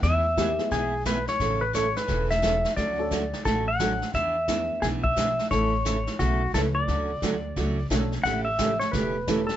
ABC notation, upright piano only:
X:1
M:4/4
L:1/8
Q:"Swing" 1/4=175
K:Amix
V:1 name="Upright piano"
z2 [G,_B,_EG] [^G,=B,=E^G]2 z3 | z6 [A,CEA] z | z [CDFA] z4 [CDFA] z | z2 [B,DE^G]3 z3 |
[A,CEA] z4 z [A,CEB]2 | z6 [CDFA] z | z6 [A,CEGA] z |]